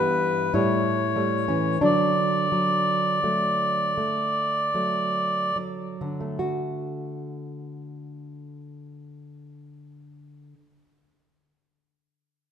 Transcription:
0, 0, Header, 1, 3, 480
1, 0, Start_track
1, 0, Key_signature, 2, "major"
1, 0, Tempo, 1181102
1, 215, Tempo, 1293103
1, 695, Time_signature, 3, 2, 24, 8
1, 695, Tempo, 1408451
1, 1175, Tempo, 1515152
1, 1655, Tempo, 1662050
1, 3898, End_track
2, 0, Start_track
2, 0, Title_t, "Bandoneon"
2, 0, Program_c, 0, 23
2, 0, Note_on_c, 0, 71, 56
2, 217, Note_off_c, 0, 71, 0
2, 217, Note_on_c, 0, 73, 55
2, 696, Note_off_c, 0, 73, 0
2, 703, Note_on_c, 0, 74, 55
2, 1894, Note_off_c, 0, 74, 0
2, 3898, End_track
3, 0, Start_track
3, 0, Title_t, "Nylon-string guitar"
3, 0, Program_c, 1, 24
3, 0, Note_on_c, 1, 43, 49
3, 0, Note_on_c, 1, 52, 39
3, 0, Note_on_c, 1, 59, 43
3, 0, Note_on_c, 1, 67, 69
3, 200, Note_off_c, 1, 52, 0
3, 200, Note_off_c, 1, 59, 0
3, 200, Note_off_c, 1, 67, 0
3, 203, Note_off_c, 1, 43, 0
3, 218, Note_on_c, 1, 64, 63
3, 219, Note_on_c, 1, 45, 50
3, 222, Note_on_c, 1, 55, 48
3, 443, Note_off_c, 1, 55, 0
3, 448, Note_on_c, 1, 55, 34
3, 451, Note_on_c, 1, 57, 37
3, 557, Note_off_c, 1, 64, 0
3, 569, Note_on_c, 1, 61, 53
3, 571, Note_off_c, 1, 55, 0
3, 573, Note_on_c, 1, 52, 39
3, 682, Note_off_c, 1, 57, 0
3, 683, Note_off_c, 1, 45, 0
3, 688, Note_off_c, 1, 52, 0
3, 690, Note_off_c, 1, 61, 0
3, 692, Note_on_c, 1, 62, 57
3, 694, Note_on_c, 1, 50, 44
3, 696, Note_on_c, 1, 54, 44
3, 929, Note_off_c, 1, 54, 0
3, 933, Note_on_c, 1, 54, 35
3, 1172, Note_off_c, 1, 54, 0
3, 1176, Note_on_c, 1, 54, 30
3, 1177, Note_on_c, 1, 57, 32
3, 1398, Note_off_c, 1, 54, 0
3, 1398, Note_off_c, 1, 57, 0
3, 1411, Note_on_c, 1, 57, 32
3, 1652, Note_off_c, 1, 57, 0
3, 1654, Note_on_c, 1, 54, 30
3, 1656, Note_on_c, 1, 57, 32
3, 1878, Note_off_c, 1, 62, 0
3, 1879, Note_off_c, 1, 54, 0
3, 1880, Note_off_c, 1, 57, 0
3, 1890, Note_on_c, 1, 54, 29
3, 2017, Note_off_c, 1, 50, 0
3, 2020, Note_on_c, 1, 50, 41
3, 2076, Note_on_c, 1, 57, 34
3, 2130, Note_on_c, 1, 66, 42
3, 2131, Note_off_c, 1, 54, 0
3, 3326, Note_off_c, 1, 50, 0
3, 3383, Note_off_c, 1, 57, 0
3, 3437, Note_off_c, 1, 66, 0
3, 3898, End_track
0, 0, End_of_file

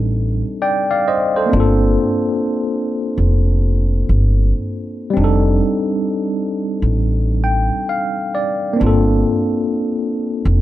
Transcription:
0, 0, Header, 1, 3, 480
1, 0, Start_track
1, 0, Key_signature, -2, "minor"
1, 0, Tempo, 909091
1, 807, Time_signature, 4, 2, 24, 8
1, 5605, End_track
2, 0, Start_track
2, 0, Title_t, "Tine electric piano"
2, 0, Program_c, 0, 4
2, 0, Control_c, 0, 64, 127
2, 0, Note_on_c, 0, 55, 76
2, 0, Note_on_c, 0, 60, 63
2, 0, Note_on_c, 0, 62, 66
2, 0, Note_on_c, 0, 63, 64
2, 0, Note_on_c, 0, 69, 81
2, 324, Note_off_c, 0, 69, 0
2, 326, Note_on_c, 0, 74, 66
2, 328, Note_on_c, 0, 79, 70
2, 468, Note_off_c, 0, 74, 0
2, 478, Note_on_c, 0, 77, 66
2, 480, Note_on_c, 0, 74, 58
2, 563, Note_off_c, 0, 77, 0
2, 564, Note_off_c, 0, 74, 0
2, 569, Note_on_c, 0, 75, 66
2, 570, Note_on_c, 0, 72, 57
2, 710, Note_off_c, 0, 75, 0
2, 711, Note_off_c, 0, 72, 0
2, 720, Note_on_c, 0, 72, 63
2, 724, Note_on_c, 0, 69, 50
2, 768, Note_off_c, 0, 55, 0
2, 772, Note_on_c, 0, 58, 65
2, 777, Note_off_c, 0, 60, 0
2, 786, Note_off_c, 0, 62, 0
2, 786, Note_off_c, 0, 79, 0
2, 790, Note_on_c, 0, 60, 62
2, 795, Note_off_c, 0, 63, 0
2, 808, Note_on_c, 0, 62, 68
2, 813, Control_c, 0, 64, 0
2, 827, Note_on_c, 0, 65, 65
2, 838, Note_off_c, 0, 69, 0
2, 844, Note_on_c, 0, 69, 77
2, 896, Control_c, 0, 64, 127
2, 946, Note_off_c, 0, 72, 0
2, 2688, Note_off_c, 0, 58, 0
2, 2694, Note_on_c, 0, 55, 71
2, 2697, Note_off_c, 0, 60, 0
2, 2706, Note_off_c, 0, 62, 0
2, 2711, Note_on_c, 0, 60, 66
2, 2716, Note_off_c, 0, 65, 0
2, 2724, Note_off_c, 0, 69, 0
2, 2729, Note_on_c, 0, 62, 63
2, 2733, Control_c, 0, 64, 0
2, 2748, Note_on_c, 0, 63, 64
2, 2767, Note_on_c, 0, 69, 80
2, 2823, Control_c, 0, 64, 127
2, 3927, Note_on_c, 0, 79, 65
2, 4150, Note_off_c, 0, 79, 0
2, 4167, Note_on_c, 0, 77, 67
2, 4390, Note_off_c, 0, 77, 0
2, 4407, Note_on_c, 0, 74, 67
2, 4609, Note_off_c, 0, 55, 0
2, 4611, Note_on_c, 0, 58, 72
2, 4618, Note_off_c, 0, 60, 0
2, 4627, Note_off_c, 0, 62, 0
2, 4628, Note_on_c, 0, 60, 58
2, 4630, Note_off_c, 0, 74, 0
2, 4636, Note_off_c, 0, 63, 0
2, 4645, Note_on_c, 0, 62, 63
2, 4646, Note_off_c, 0, 69, 0
2, 4653, Control_c, 0, 64, 0
2, 4665, Note_on_c, 0, 65, 65
2, 4681, Note_on_c, 0, 69, 76
2, 4731, Control_c, 0, 64, 127
2, 5605, Note_off_c, 0, 58, 0
2, 5605, Note_off_c, 0, 60, 0
2, 5605, Note_off_c, 0, 62, 0
2, 5605, Note_off_c, 0, 65, 0
2, 5605, Note_off_c, 0, 69, 0
2, 5605, End_track
3, 0, Start_track
3, 0, Title_t, "Upright bass"
3, 0, Program_c, 1, 32
3, 0, Note_on_c, 1, 33, 79
3, 218, Note_off_c, 1, 33, 0
3, 808, Note_on_c, 1, 31, 97
3, 1030, Note_off_c, 1, 31, 0
3, 1677, Note_on_c, 1, 29, 82
3, 2135, Note_off_c, 1, 29, 0
3, 2160, Note_on_c, 1, 31, 80
3, 2381, Note_off_c, 1, 31, 0
3, 2728, Note_on_c, 1, 29, 91
3, 2951, Note_off_c, 1, 29, 0
3, 3602, Note_on_c, 1, 33, 78
3, 4058, Note_off_c, 1, 33, 0
3, 4651, Note_on_c, 1, 31, 95
3, 4872, Note_off_c, 1, 31, 0
3, 5519, Note_on_c, 1, 29, 93
3, 5605, Note_off_c, 1, 29, 0
3, 5605, End_track
0, 0, End_of_file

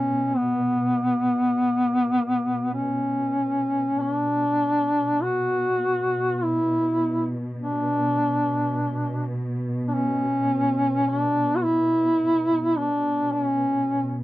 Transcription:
0, 0, Header, 1, 3, 480
1, 0, Start_track
1, 0, Key_signature, 2, "minor"
1, 0, Tempo, 500000
1, 13667, End_track
2, 0, Start_track
2, 0, Title_t, "Duduk"
2, 0, Program_c, 0, 69
2, 0, Note_on_c, 0, 61, 79
2, 355, Note_on_c, 0, 59, 84
2, 369, Note_off_c, 0, 61, 0
2, 2617, Note_off_c, 0, 59, 0
2, 2632, Note_on_c, 0, 61, 69
2, 3843, Note_on_c, 0, 62, 94
2, 3858, Note_off_c, 0, 61, 0
2, 5015, Note_on_c, 0, 66, 84
2, 5029, Note_off_c, 0, 62, 0
2, 6176, Note_on_c, 0, 64, 92
2, 6190, Note_off_c, 0, 66, 0
2, 7035, Note_off_c, 0, 64, 0
2, 7310, Note_on_c, 0, 62, 86
2, 8960, Note_off_c, 0, 62, 0
2, 9487, Note_on_c, 0, 62, 58
2, 9542, Note_on_c, 0, 61, 92
2, 9557, Note_off_c, 0, 62, 0
2, 10644, Note_on_c, 0, 62, 110
2, 10658, Note_off_c, 0, 61, 0
2, 11096, Note_on_c, 0, 66, 70
2, 11110, Note_off_c, 0, 62, 0
2, 11165, Note_on_c, 0, 64, 100
2, 11180, Note_off_c, 0, 66, 0
2, 12257, Note_on_c, 0, 62, 92
2, 12272, Note_off_c, 0, 64, 0
2, 12789, Note_on_c, 0, 61, 93
2, 12803, Note_off_c, 0, 62, 0
2, 13609, Note_off_c, 0, 61, 0
2, 13667, End_track
3, 0, Start_track
3, 0, Title_t, "Cello section"
3, 0, Program_c, 1, 48
3, 0, Note_on_c, 1, 47, 43
3, 3804, Note_off_c, 1, 47, 0
3, 3815, Note_on_c, 1, 47, 47
3, 13667, Note_off_c, 1, 47, 0
3, 13667, End_track
0, 0, End_of_file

